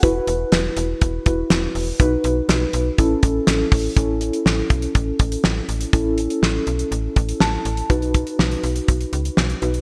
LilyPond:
<<
  \new Staff \with { instrumentName = "Synth keys" } { \time 4/4 \key a \lydian \tempo 4 = 122 << { r1 | r1 | r1 | r2. a''4 |
r1 | } \\ { <e' fis' b'>2~ <e' fis' b'>8 <e' fis' b'>4. | <dis' fis' b'>2 <cis' e' a'>2 | <cis' e' a'>1 | <cis' e' a'>1 |
<dis' fis' b'>2.~ <dis' fis' b'>8 <dis' fis' b'>8 | } >> }
  \new Staff \with { instrumentName = "FM bass" } { \clef bass \time 4/4 \key a \lydian e,,8 e,,8 e,,8 e,,8 e,,8 e,,8 e,,8 e,,8 | b,,8 b,,8 b,,8 b,,8 a,,8 a,,8 a,,8 a,,8 | a,,4 a,,8 b,,8 a,,8 a,,8 a,,8 a,,8 | a,,4 a,,8 b,,8 a,,8 a,,8 a,,8 a,,8 |
b,,4 b,,8 b,,8 b,,8 cis,8 b,,8 b,,8 | }
  \new DrumStaff \with { instrumentName = "Drums" } \drummode { \time 4/4 <hh bd>8 hh8 <hh sn>8 hh8 <hh bd>8 <hh bd>8 <hh sn>8 hho8 | <hh bd>8 hh8 <hh sn>8 hh8 <hh bd>8 <hh bd>8 <hh sn>8 <hho bd>8 | <hh bd>8 hh16 hh16 sn8 <hh bd>16 hh16 <hh bd>8 <hh bd>16 hh16 sn8 hh16 hh16 | <hh bd>8 hh16 hh16 sn8 hh16 hh16 hh8 <hh bd>16 hh16 sn8 hh16 hh16 |
<hh bd>16 hh16 <hh bd>16 hh16 sn16 hh16 hh16 hh16 <hh bd>16 hh16 hh16 hh16 sn16 hh16 hh16 hh16 | }
>>